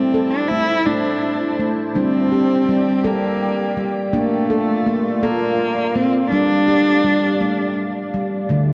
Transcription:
Already playing: A3 C4 E4 C5 A5
0.14 A4
0.30 D4
0.48 A3 E4
0.86 A3 D4
1.59 A3
1.95 G3 C4 D4 G4 D5 G5
2.32 G4
2.69 G3
2.98 C4
3.04 G3 A#3 A4
3.77 G3
4.13 A3 A#3 D4 F4 D5 F5
4.50 A4
4.86 A#3
5.23 A#3 A4
5.95 A#3 C4
6.31 G3 D4 G4
6.68 G4
7.04 G3
7.40 G3 A3
8.14 G3
8.49 D3 A3 F4 D5 A5

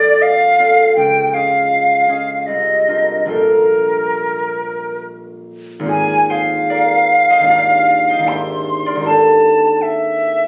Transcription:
Already playing: A#1 A3 C4 F4 A4 D5
0.22 F5
0.59 C4 F4 A4 D5
0.96 C#2 G5
1.33 C#4 F4 G#4 D#5 F5
2.08 C#4 F4 G#4 D#5
2.46 C2 D#5
2.88 D4 F4 A#4 C5
3.26 A#1 D4 F4 A4
3.30 A#4 C5
5.79 G#1 A#3
5.84 C4 F4
5.88 G#4 G#5
6.30 G#4 C5 F5
6.70 A#4 D5
7.30 C5 D#5
7.39 G#1 A#3
7.43 D4 F4
7.48 G4 D5 F5
8.10 D#5 G5
8.18 G#1 A#3
8.23 D4 E4
8.27 G4 C5 E5 C6
8.86 A#4 D5
8.95 G#1 A#3
9.00 D4 E4
9.04 G4 A4 C5 A5
9.82 E5

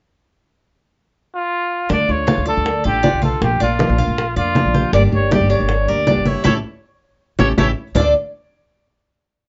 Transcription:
1.35 F4
1.89 D2 D3 A3 D4 F4 D5, high bongo, high conga
2.09 D2 A3 D4 F4 C#5, high bongo, high conga
2.27 D3 A3 D4 F4, high bongo, high conga
2.38 D2
2.46 A3 D4 F4 A4 D5, high bongo, high conga
2.57 D2
2.66 muted nylon-string guitar stroke, high bongo, high conga
2.84 A1 A3 D4 F4 G4 A4, high conga
3.03 D3 A3 D4 F4, high bongo, low bongo, high conga
3.13 B1
3.22 F4 A4, high bongo, high conga
3.42 A#1 F3 A#3 D4 F4 G4, high bongo, high conga
3.60 A#1 A#3 D4 F4, high bongo, high conga
3.79 F3 A#3 D4 F4, high bongo, high conga
3.89 A#1
3.98 A#3 D4 F4, high bongo, high conga
4.08 A#1
4.18 muted nylon-string guitar stroke, high bongo, high conga
4.36 F2 A#3 D4 F4 D5, high conga
4.55 F3 A#3 D4 F4, high bongo, low bongo, high conga
4.65 A#1
4.74 G4, high bongo, high conga
4.93 G1 D3 G3 A#3 D4 G4 D5, high bongo, high conga
5.12 G1 A#3 D4 G4 C#5, high bongo, high conga
5.31 D3 G3 A#3 D4 G4 D5, high bongo, high conga
5.41 G1
5.50 A#3 D4 G4 C#5, high bongo, high conga
5.60 G1
5.69 muted nylon-string guitar stroke, high bongo, high conga
5.88 D2 A#3 D4 G4 A#4 D5, high conga
6.07 D3 G3 A#3 D4 G4, high bongo, low bongo, high conga
6.17 G1
6.25 E4 C#5, high bongo, high conga
6.44 A1 A3 C#4 E4 G4 A4 C#5, low bongo, high conga
7.39 A1 A3 C#4 E4 G4 A4 C#5, low bongo, high conga
7.58 A1 A3 C#4 E4 G4 A4 C#5, low bongo, high conga
7.95 D2 D3 A3 D4 F4 A4 D5, low bongo, low conga

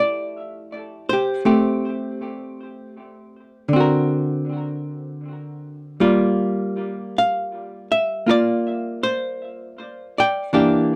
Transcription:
Already playing: F3 A3 E4 G4 A4 D5
1.09 G4 C5
1.45 A3 C4 G4
3.69 D3
3.73 C4 F#4
3.80 A#4
6.00 G3 A#3 F4
7.18 F5
7.92 E5
8.26 A#3 F4
8.31 D5
9.03 C5
10.18 D5 G5
10.53 E3 A#3 D4 G4

